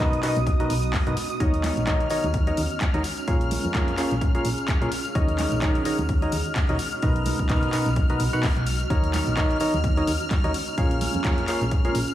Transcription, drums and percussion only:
0.00 kick, clap, closed hi-hat
0.13 closed hi-hat
0.23 clap, open hi-hat, tambourine
0.36 closed hi-hat, tambourine, high conga
0.47 kick, closed hi-hat, tambourine
0.60 closed hi-hat
0.70 open hi-hat, tambourine
0.83 closed hi-hat, tambourine
0.93 kick, clap, open hi-hat, tambourine, high conga
1.07 closed hi-hat
1.17 open hi-hat, tambourine
1.30 closed hi-hat, tambourine
1.40 kick, closed hi-hat, tambourine
1.54 closed hi-hat
1.64 clap, open hi-hat, tambourine, high conga
1.77 closed hi-hat, tambourine
1.87 kick, clap, closed hi-hat, tambourine
2.00 closed hi-hat
2.10 open hi-hat, tambourine
2.24 closed hi-hat, tambourine, high conga
2.34 kick, closed hi-hat, tambourine
2.47 closed hi-hat
2.57 open hi-hat, tambourine
2.70 closed hi-hat, tambourine
2.81 kick, clap, closed hi-hat, tambourine, high conga
2.94 closed hi-hat
3.04 open hi-hat, tambourine
3.18 closed hi-hat, tambourine
3.28 kick, closed hi-hat, tambourine
3.41 closed hi-hat
3.51 open hi-hat, tambourine, high conga
3.65 closed hi-hat, tambourine
3.75 kick, clap, closed hi-hat, tambourine
3.88 closed hi-hat
3.98 clap, open hi-hat, tambourine
4.11 closed hi-hat, tambourine, high conga
4.21 kick, closed hi-hat, tambourine
4.35 closed hi-hat
4.45 open hi-hat, tambourine
4.58 closed hi-hat, tambourine
4.68 kick, clap, closed hi-hat, tambourine, high conga
4.82 closed hi-hat
4.92 open hi-hat, tambourine
5.05 closed hi-hat, tambourine
5.15 kick, closed hi-hat
5.28 closed hi-hat
5.39 clap, open hi-hat, tambourine, high conga
5.52 closed hi-hat, tambourine
5.62 kick, clap, closed hi-hat, tambourine
5.75 closed hi-hat
5.85 open hi-hat, tambourine
5.99 closed hi-hat, tambourine, high conga
6.09 kick, closed hi-hat, tambourine
6.22 closed hi-hat
6.32 open hi-hat, tambourine
6.46 closed hi-hat, tambourine
6.56 kick, clap, closed hi-hat, tambourine, high conga
6.69 closed hi-hat
6.79 open hi-hat, tambourine
6.92 closed hi-hat, tambourine
7.02 kick, closed hi-hat, tambourine
7.16 closed hi-hat
7.25 open hi-hat, tambourine, high conga
7.39 kick, closed hi-hat, tambourine
7.49 kick, clap, closed hi-hat, tambourine
7.63 closed hi-hat
7.73 clap, open hi-hat, tambourine
7.86 closed hi-hat, tambourine, high conga
7.96 kick, closed hi-hat, tambourine
8.10 closed hi-hat
8.20 open hi-hat, tambourine
8.33 tambourine
8.43 kick, clap, open hi-hat, tambourine, high conga
8.57 closed hi-hat
8.66 open hi-hat, tambourine
8.80 closed hi-hat, tambourine
8.90 kick, closed hi-hat, tambourine
9.04 closed hi-hat
9.13 clap, open hi-hat, tambourine, high conga
9.27 closed hi-hat, tambourine
9.37 kick, clap, closed hi-hat, tambourine
9.51 closed hi-hat
9.60 open hi-hat, tambourine
9.74 closed hi-hat, tambourine, high conga
9.83 kick, closed hi-hat, tambourine
9.97 closed hi-hat
10.07 open hi-hat, tambourine
10.21 closed hi-hat, tambourine
10.30 kick, clap, closed hi-hat, tambourine, high conga
10.44 closed hi-hat
10.54 open hi-hat, tambourine
10.68 tambourine
10.78 kick, closed hi-hat, tambourine
10.91 closed hi-hat
11.01 open hi-hat, tambourine, high conga
11.14 closed hi-hat, tambourine
11.24 kick, clap, closed hi-hat, tambourine
11.38 closed hi-hat
11.48 clap, open hi-hat, tambourine
11.61 closed hi-hat, tambourine, high conga
11.71 kick, closed hi-hat, tambourine
11.85 closed hi-hat
11.95 open hi-hat, tambourine
12.08 closed hi-hat, tambourine

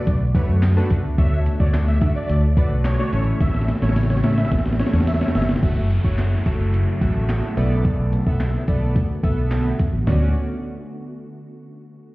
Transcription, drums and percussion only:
0.07 kick, closed hi-hat
0.35 kick, closed hi-hat
0.62 snare, clap, closed hi-hat, tambourine
0.90 kick, closed hi-hat
1.18 kick, closed hi-hat
1.46 closed hi-hat
1.60 kick
1.74 snare, clap, closed hi-hat, tambourine
2.01 kick, closed hi-hat
2.29 closed hi-hat
2.57 kick, closed hi-hat
2.85 snare, clap, closed hi-hat, tambourine
3.13 closed hi-hat
3.41 kick, snare, closed hi-hat
3.47 snare
3.54 snare
3.61 snare
3.68 snare, closed hi-hat
3.75 snare
3.82 snare
3.89 snare
3.96 snare, closed hi-hat, tambourine
4.03 snare
4.10 snare
4.17 snare
4.24 snare, closed hi-hat
4.31 snare
4.38 snare
4.45 snare
4.52 kick, snare, closed hi-hat
4.59 snare
4.66 snare
4.73 snare
4.79 snare, closed hi-hat
4.87 snare
4.93 snare
5.00 snare
5.07 snare, closed hi-hat, tambourine
5.14 snare
5.21 snare
5.28 snare
5.35 snare, open hi-hat
5.42 snare
5.49 snare
5.56 snare
5.63 kick, closed hi-hat
5.91 closed hi-hat
6.05 kick
6.18 snare, clap, closed hi-hat
6.46 kick, closed hi-hat
6.74 closed hi-hat
7.01 kick, closed hi-hat
7.29 snare, clap, closed hi-hat
7.57 closed hi-hat
7.85 kick, closed hi-hat
8.13 closed hi-hat
8.27 kick
8.40 snare, clap, closed hi-hat
8.68 kick, closed hi-hat
8.96 kick, closed hi-hat
9.23 kick, closed hi-hat
9.51 snare, clap, closed hi-hat
9.79 kick, closed hi-hat
10.07 snare, floor tom

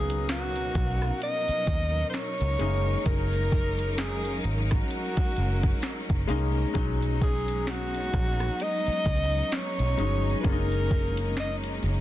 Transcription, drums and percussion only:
0.10 closed hi-hat
0.29 snare, closed hi-hat
0.56 closed hi-hat
0.75 kick, closed hi-hat
1.02 cross-stick, closed hi-hat
1.22 closed hi-hat
1.48 closed hi-hat
1.67 kick, closed hi-hat
2.13 snare, closed hi-hat
2.41 closed hi-hat
2.60 closed hi-hat
3.06 kick, closed hi-hat
3.33 closed hi-hat
3.52 kick, closed hi-hat
3.79 closed hi-hat
3.98 snare, closed hi-hat
4.25 closed hi-hat
4.44 closed hi-hat
4.71 kick, cross-stick, closed hi-hat
4.90 closed hi-hat
5.17 kick, closed hi-hat
5.36 closed hi-hat
5.63 kick
5.82 snare, closed hi-hat
6.10 kick, closed hi-hat
6.29 open hi-hat
6.75 kick, closed hi-hat
7.02 closed hi-hat
7.21 kick, closed hi-hat
7.48 closed hi-hat
7.67 snare, closed hi-hat
7.94 closed hi-hat
8.13 kick, closed hi-hat
8.40 cross-stick, closed hi-hat
8.60 closed hi-hat
8.86 closed hi-hat
9.06 kick, closed hi-hat
9.52 snare, closed hi-hat
9.79 closed hi-hat
9.98 closed hi-hat
10.44 kick, closed hi-hat
10.72 closed hi-hat
10.91 kick, closed hi-hat
11.17 closed hi-hat
11.37 snare, closed hi-hat
11.64 closed hi-hat
11.83 closed hi-hat

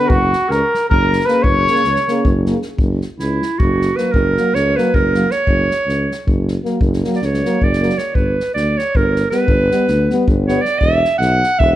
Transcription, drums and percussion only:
0.10 kick
0.33 snare
0.51 snare
0.74 snare
0.91 kick
1.13 snare
1.20 snare
1.28 snare
1.44 kick
1.67 snare
1.75 snare
1.84 snare
1.96 snare
2.08 snare
2.25 kick
2.46 snare
2.62 snare
2.79 kick
3.01 snare
3.19 snare
3.42 snare
3.60 kick
3.81 snare
3.98 snare
4.14 kick
4.37 snare
4.55 snare
4.78 snare
4.94 kick
5.14 snare
5.31 snare
5.47 kick
5.71 snare
5.89 snare
6.11 snare
6.28 kick
6.48 snare
6.65 snare
6.81 kick
6.93 snare
7.04 snare
7.13 snare
7.22 snare
7.34 snare
7.45 snare
7.62 kick
7.73 snare
7.83 snare
7.89 snare
7.98 snare
8.15 kick
8.40 snare
8.56 snare
8.79 snare
8.95 kick
9.16 snare
9.31 snare
9.48 kick
9.71 snare
9.88 snare
10.10 snare
10.28 kick
10.48 snare
10.65 snare
10.81 kick
11.05 snare
11.21 snare
11.43 snare
11.60 kick

